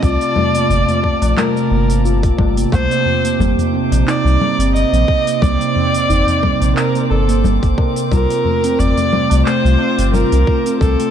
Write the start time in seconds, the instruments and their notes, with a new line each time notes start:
Already playing: ambient pad C3 C4 F4 A5, synth texture C4 D6
0.03 sub bass C2, steel tongue drum F4, kamancheh D5, kick, shaker
0.21 open hi-hat, shaker
0.36 steel tongue drum A3, low conga, tabla ge
0.55 steel tongue drum A#3, open hi-hat, shaker
0.69 sub bass G1, tabla ge, shaker
0.88 steel tongue drum A3, open hi-hat, tabla na, tabla ge, shaker
1.04 kick
1.22 sub bass A#1, steel tongue drum A3, open hi-hat, tabla na, shaker
1.37 steel tongue drum A3, kamancheh A#4, clap, low conga, shaker
1.56 tabla tin, shaker
1.70 sub bass G1, steel tongue drum A#3, tabla na, tabla tin
1.90 open hi-hat, shaker
2.05 steel tongue drum F4, shaker
2.23 kick, open hi-hat, shaker
2.37 sub bass G1, steel tongue drum A3, kick, tabla na, tabla tin, low conga
2.57 steel tongue drum A#3, open hi-hat, shaker
2.72 sub bass C2, kamancheh C5, kick, shaker
2.91 steel tongue drum A#3, open hi-hat, tabla tin, shaker
3.05 ambient pad D#4, tabla ge
3.25 steel tongue drum A#3, open hi-hat, shaker
3.39 sub bass G1, steel tongue drum A#3, tabla ge, low conga, shaker
3.58 open hi-hat, tabla na, tabla ge, shaker
3.74 steel tongue drum C4
3.85 ambient pad C5
3.92 sub bass A#1, open hi-hat, tabla na, shaker
4.07 steel tongue drum D#4, kamancheh D5, clap, tabla tin, shaker
4.25 sub bass C2, shaker
4.41 steel tongue drum A#3, tabla na, low conga
4.59 sub bass G1, steel tongue drum C4, open hi-hat, shaker
4.75 kamancheh D#5, shaker
4.93 sub bass A#1, steel tongue drum A#3, open hi-hat, shaker
5.08 kick
5.27 steel tongue drum A#3, open hi-hat, shaker
5.41 sub bass C2, steel tongue drum A#3, kamancheh D5, kick, low conga, shaker
5.60 open hi-hat, tabla tin, shaker
5.76 steel tongue drum C4, tabla ge
5.94 open hi-hat, shaker
6.09 sub bass G1, steel tongue drum D#4, tabla ge, shaker
6.27 open hi-hat, tabla na, tabla ge, shaker
6.43 steel tongue drum A#3, kick, low conga
6.61 sub bass A#1, steel tongue drum C4, open hi-hat, tabla na, shaker
6.76 kamancheh A#4, clap, shaker
6.95 steel tongue drum A#3, open hi-hat, tabla tin, shaker
7.10 sub bass G1, kamancheh A4, tabla na, tabla tin
7.29 steel tongue drum A#3, open hi-hat, shaker
7.44 sub bass G1, low conga, shaker
7.63 sub bass G1, kick, open hi-hat, shaker
7.78 steel tongue drum A#4, kick, tabla na, tabla tin
7.96 open hi-hat, shaker
8.11 sub bass C2, steel tongue drum F4, kamancheh A#4, kick, low conga, shaker
8.30 open hi-hat, tabla tin, shaker
8.45 steel tongue drum A3, tabla ge
8.64 steel tongue drum C4, open hi-hat, shaker
8.78 sub bass G1, ambient pad C4, kamancheh D5, tabla ge, shaker
8.86 ambient pad F4
8.96 steel tongue drum A3, open hi-hat, tabla na, tabla ge, shaker
9.13 low conga
9.30 sub bass C2, steel tongue drum A3, open hi-hat, tabla na, shaker
9.46 steel tongue drum A3, kamancheh C5, clap, tabla tin, shaker
9.65 sub bass C2, shaker
9.79 steel tongue drum C4, tabla na
9.98 sub bass G1, open hi-hat, shaker
10.14 steel tongue drum F4, kamancheh A#4, low conga, shaker
10.32 sub bass C2, open hi-hat, shaker
10.47 steel tongue drum A3, kick
10.66 steel tongue drum C4, open hi-hat, shaker
10.80 sub bass C2, ambient pad F3, kamancheh A4, kick, shaker
10.99 steel tongue drum A3, open hi-hat, tabla tin, shaker